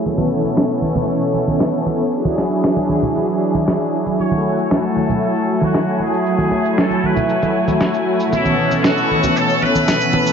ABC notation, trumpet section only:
X:1
M:4/4
L:1/16
Q:1/4=116
K:F#m
V:1 name="Trumpet section"
z16 | z16 | c4 A4 A3 F3 G2- | G4 A2 B4 z6 |
E4 F4 A2 B6 |]